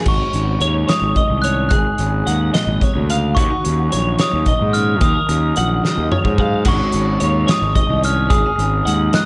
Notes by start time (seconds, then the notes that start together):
0.06 G#1 G#2 D#4 F#4 C#6, kick, crash
0.33 G#1 C#4, closed hi-hat
0.60 D#2 G#3 C#5, closed hi-hat
0.88 D#4 C#5 D#6, snare, closed hi-hat
1.02 G#1
1.15 D#3 D#5, kick, closed hi-hat
1.30 C2
1.42 C#4 C#5 F#6, closed hi-hat
1.69 G#1 G#2 D#4 G#4 F#6, kick, closed hi-hat
1.98 G#1 C#4, closed hi-hat
2.27 D#2 G#3 F#5, closed hi-hat
2.54 A#2 D#5, snare, closed hi-hat
2.67 G#1
2.81 C3 C#5, kick, closed hi-hat
2.96 D2
3.08 C#3 F5, closed hi-hat
3.35 D#2 D#3 C#4 F#4 C#6, kick, closed hi-hat
3.50 D#4
3.64 D#2 C#4, closed hi-hat
3.91 A#1 F#3 C#5, closed hi-hat
4.19 D#4 C#5 D#6, snare, closed hi-hat
4.33 D#2
4.46 A#2 D#5, kick, closed hi-hat
4.61 G#2
4.73 C#4 C#5 F6, closed hi-hat
5.01 D#2 D#3 D#4 A#4 D#6, kick, closed hi-hat
5.29 D#2 C#4, closed hi-hat
5.56 A#1 F#3 F#5, closed hi-hat
5.84 D#3 D#5, snare
5.98 D#2
6.12 F3 C#5, mid tom
6.25 G#2, kick
6.38 F#3 F5, kick
6.65 G#1 G#2 G#3 C#4 D#4 F#4 C#6, kick, closed hi-hat, crash
6.92 G#1 C#4, closed hi-hat
7.20 D#2 G#3 C#5, closed hi-hat
7.47 D#4 C#5 D#6, snare, closed hi-hat
7.62 G#1
7.75 D#3 D#5, kick, closed hi-hat
7.89 C2
8.03 C#4 C#5 F6, closed hi-hat
8.30 G#1 G#2 C#4 G#4 D#6, kick, closed hi-hat
8.46 D#4
8.58 G#1 C#4, closed hi-hat
8.85 D#2 G#3 F#5, closed hi-hat
9.13 D#4 D#5 F#6, snare, closed hi-hat